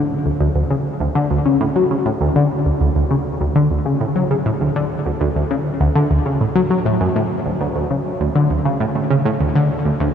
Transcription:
0.26 D2
0.40 D2
0.55 D2
0.70 C#3
1.00 D2
1.15 D3
1.31 D2
1.46 C#3
1.61 A2
1.76 F#3
1.91 C#3
2.06 A2
2.21 D2
2.36 D3
2.66 D2
2.81 D2
2.96 D2
3.10 C#3
3.41 D2
3.55 D3
3.71 D2
3.85 C#3
4.01 A2
4.16 F#3
4.31 C#3
4.46 A2
4.61 D2
4.76 D3
5.06 D2
5.21 D2
5.36 D2
5.51 C#3
5.81 D2
5.96 D3
6.11 D2
6.26 C#3
6.41 A2
6.56 F#3
6.70 F#3
6.86 A2
7.01 F#2
7.16 A2
7.46 D2
7.60 D2
7.75 D2
7.90 C#3
8.21 D2
8.35 D3
8.51 D2
8.66 C#3
8.81 A2
8.95 A2
9.10 C#3
9.25 A2
9.40 D2
9.56 D3
9.85 D2
10.00 D2

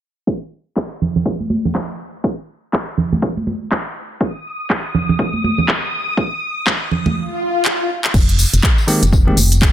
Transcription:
0.27 kick
0.76 kick, clap
1.02 low conga
1.16 low conga
1.26 kick
1.40 high conga
1.50 high conga
1.65 low conga
1.75 kick, clap
2.24 kick
2.73 kick, clap
2.98 low conga
3.12 high conga, low conga
3.22 kick
3.37 high conga
3.47 high conga
3.71 kick, clap
4.21 D#6, kick
4.70 kick, clap
4.95 low conga
5.09 low conga
5.19 kick
5.33 high conga
5.44 high conga
5.58 low conga
5.68 kick, clap
6.17 kick
6.67 kick, clap
6.91 low conga
7.06 high conga, low conga
7.16 swell
7.65 clap
8.04 clap
8.14 F1, kick, tambourine, crash, low conga
8.29 closed hi-hat, tambourine
8.39 open hi-hat, tambourine
8.53 F1, closed hi-hat, tambourine
8.63 kick, clap, tambourine
8.78 tambourine
8.87 D#3 G#3 A#3 C4 G4, open hi-hat, tambourine
9.03 F1, closed hi-hat, tambourine, low conga
9.12 kick, tambourine
9.27 D#3 G#3 A#3 C4 G4, high conga
9.37 F1, open hi-hat, tambourine, high conga
9.51 closed hi-hat, tambourine
9.62 kick, clap, tambourine

